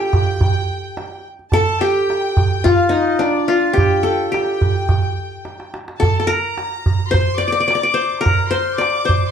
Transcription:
0.00 0.26 D4 medium
0.00 0.39 F4 medium
0.00 1.23 G4 medium
0.00 0.79 A4 medium
0.00 1.25 G5 medium
0.13 darbuka dum medium
0.41 darbuka dum medium
0.97 darbuka tek medium
1.39 darbuka ka soft
1.52 2.70 A4 loud
1.52 1.79 A5 medium
1.52 darbuka dum medium
1.81 3.07 G4 medium
1.81 2.65 G5 medium
2.10 darbuka tek medium
2.37 darbuka dum medium
2.64 3.48 F4 medium
2.64 2.93 F5 medium
2.64 darbuka dum medium
2.89 3.25 D#4 medium
2.89 3.20 D#5 medium
3.19 4.68 D4 medium
3.19 3.50 D5 medium
3.19 darbuka tek medium
3.48 4.83 F4 medium
3.48 3.76 F5 medium
3.64 darbuka ka soft
3.73 4.31 G4 medium
3.73 4.29 G5 medium
3.78 darbuka dum medium
3.92 darbuka ka soft
4.03 5.20 A4 medium
4.32 5.68 G4 medium
4.32 5.68 G5 medium
4.32 darbuka tek medium
4.61 darbuka dum medium
4.76 darbuka ka soft
4.89 darbuka dum medium
5.18 darbuka ka soft
5.45 darbuka tek medium
5.60 darbuka ka medium
5.74 darbuka tek medium
5.88 darbuka ka medium
6.00 6.19 A4 medium
6.00 6.27 A5 medium
6.00 darbuka dum medium
6.20 6.33 A4 medium
6.27 7.40 A#4 medium
6.27 7.12 A#5 medium
6.58 darbuka tek medium
6.86 darbuka dum medium
7.11 7.93 C5 medium
7.11 7.40 C6 medium
7.11 darbuka dum medium
7.38 7.47 D5 medium
7.38 8.24 D6 medium
7.48 7.52 D5 medium
7.52 7.60 D5 medium
7.60 7.67 D5 medium
7.68 7.75 D5 medium
7.68 darbuka tek medium
7.75 7.83 D5 medium
7.83 8.78 D5 medium
7.94 8.50 C5 medium
8.12 darbuka ka soft
8.21 9.31 A#4 medium
8.21 8.50 A#5 medium
8.26 darbuka dum medium
8.51 9.05 C5 medium
8.51 8.80 C6 medium
8.78 9.31 D5 medium
8.78 9.26 D6 medium
8.78 darbuka tek medium
9.05 9.31 C5 medium
9.05 darbuka dum medium

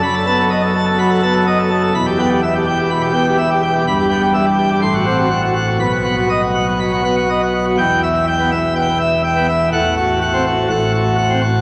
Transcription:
0.03 1.90 F#1 medium
0.03 1.90 F#2 medium
0.03 0.14 B5 loud
0.14 0.26 A4 medium
0.27 0.48 B3 medium
0.27 0.38 A5 medium
0.39 0.50 A4 medium
0.50 0.61 D#5 medium
0.62 0.74 A4 medium
0.75 0.86 A5 medium
0.87 0.98 A4 medium
0.99 1.20 F#3 medium
0.99 1.10 B5 medium
1.11 1.22 A4 medium
1.23 1.44 B3 medium
1.23 1.34 A5 medium
1.34 1.45 A4 medium
1.47 1.58 D#5 medium
1.59 1.70 A4 medium
1.71 1.81 A5 medium
1.83 1.93 A4 medium
1.95 3.82 E1 medium
1.95 3.82 E2 medium
1.95 2.05 B5 loud
2.07 2.17 G4 medium
2.19 2.40 B3 medium
2.19 2.29 G5 medium
2.30 2.41 G4 medium
2.43 2.53 E5 medium
2.55 2.65 G4 medium
2.67 2.77 G5 medium
2.79 2.89 G4 medium
2.90 3.12 B2 medium
2.90 3.01 B5 medium
3.03 3.13 G4 medium
3.14 3.36 B3 medium
3.14 3.25 G5 medium
3.26 3.37 G4 medium
3.38 3.49 E5 medium
3.51 3.61 G4 medium
3.63 3.73 G5 medium
3.75 3.85 G4 medium
3.87 4.80 G1 medium
3.87 4.80 G2 medium
3.87 3.98 B5 loud
3.99 4.09 G4 medium
4.11 4.32 B3 medium
4.11 4.21 G5 medium
4.22 4.33 G4 medium
4.34 4.45 E5 medium
4.46 4.57 G4 medium
4.58 4.69 G5 medium
4.70 4.80 G4 medium
4.82 5.77 A1 medium
4.82 5.77 A2 medium
4.82 4.93 C6 loud
4.94 5.05 F#4 medium
5.06 5.28 C4 medium
5.06 5.17 F#5 medium
5.19 5.29 F#4 medium
5.30 5.41 F#5 medium
5.43 5.54 F#4 medium
5.55 5.66 F#5 medium
5.67 5.78 F#4 medium
5.80 7.75 B1 medium
5.80 7.75 B2 medium
5.80 5.91 B5 medium
5.92 6.03 F#4 medium
6.04 6.27 B3 medium
6.04 6.16 F#5 medium
6.17 6.29 F#4 medium
6.30 6.41 D#5 medium
6.43 6.54 F#4 medium
6.55 6.66 F#5 medium
6.67 6.79 F#4 medium
6.79 7.02 F#3 medium
6.79 6.91 B5 medium
6.92 7.03 F#4 medium
7.04 7.27 B3 medium
7.04 7.16 F#5 medium
7.17 7.28 F#4 medium
7.30 7.41 D#5 medium
7.42 7.53 F#4 medium
7.54 7.65 F#5 medium
7.66 7.77 F#4 medium
7.78 9.69 E1 medium
7.78 9.69 E2 medium
7.78 8.01 G5 medium
8.03 8.25 E5 medium
8.27 8.49 G5 medium
8.40 8.51 B3 medium
8.52 8.74 E5 medium
8.76 8.87 B2 medium
8.76 8.98 G5 medium
9.00 9.22 E5 medium
9.24 9.46 G5 medium
9.36 9.47 B3 medium
9.49 9.69 E5 medium
9.72 10.68 A1 medium
9.72 10.68 A2 medium
9.72 9.94 F#5 medium
9.97 10.19 F#4 medium
10.21 10.43 F#5 medium
10.34 10.45 C4 medium
10.46 10.68 F#4 medium
10.70 11.61 A1 medium
10.70 11.61 A2 medium
10.70 10.92 F#5 medium
10.94 11.16 F#4 medium
11.18 11.40 F#5 medium
11.30 11.41 C4 medium
11.42 11.61 F#4 medium

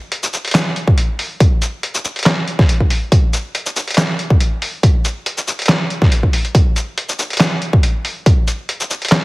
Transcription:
0.12 closed hi-hat medium
0.23 shaker medium
0.33 shaker medium
0.45 closed hi-hat soft
0.48 closed hi-hat medium
0.51 snare loud
0.51 clap medium
0.51 closed hi-hat medium
0.55 closed hi-hat medium
0.55 shaker medium
0.76 closed hi-hat medium
0.87 kick loud
0.98 closed hi-hat medium
1.19 open hi-hat medium
1.40 kick loud
1.40 closed hi-hat medium
1.62 closed hi-hat medium
1.62 shaker medium
1.83 closed hi-hat medium
1.95 shaker medium
2.05 shaker medium
2.16 closed hi-hat soft
2.19 closed hi-hat medium
2.23 snare loud
2.23 clap medium
2.23 closed hi-hat medium
2.26 closed hi-hat medium
2.48 closed hi-hat soft
2.59 kick loud
2.59 snare soft
2.69 closed hi-hat medium
2.80 kick medium
2.90 open hi-hat medium
3.12 kick loud
3.12 closed hi-hat medium
3.33 closed hi-hat medium
3.33 shaker medium
3.55 closed hi-hat medium
3.66 shaker medium
3.76 shaker medium
3.88 closed hi-hat medium
3.91 closed hi-hat medium
3.94 snare loud
3.94 clap medium
3.94 closed hi-hat medium
3.94 shaker medium
4.19 closed hi-hat medium
4.30 kick loud
4.40 closed hi-hat medium
4.62 open hi-hat medium
4.83 kick loud
4.83 closed hi-hat medium
5.05 closed hi-hat medium
5.05 shaker medium
5.26 closed hi-hat medium
5.38 shaker medium
5.48 shaker medium
5.59 closed hi-hat medium
5.62 closed hi-hat medium
5.66 snare loud
5.66 clap medium
5.66 closed hi-hat medium
5.69 closed hi-hat medium
5.90 closed hi-hat medium
6.02 kick loud
6.02 snare soft
6.12 closed hi-hat medium
6.23 kick medium
6.33 open hi-hat medium
6.45 closed hi-hat soft
6.55 kick loud
6.55 closed hi-hat medium
6.76 closed hi-hat medium
6.76 shaker medium
6.98 closed hi-hat medium
7.09 shaker medium
7.19 shaker medium
7.30 closed hi-hat medium
7.33 closed hi-hat medium
7.37 snare loud
7.37 clap medium
7.37 closed hi-hat medium
7.40 closed hi-hat medium
7.40 shaker medium
7.62 closed hi-hat medium
7.73 kick loud
7.83 closed hi-hat medium
8.05 open hi-hat medium
8.26 kick loud
8.26 closed hi-hat medium
8.48 closed hi-hat medium
8.48 shaker medium
8.69 closed hi-hat medium
8.80 shaker medium
8.90 shaker medium
9.02 closed hi-hat soft
9.05 closed hi-hat medium
9.08 snare loud
9.08 clap medium
9.08 closed hi-hat medium
9.12 closed hi-hat medium

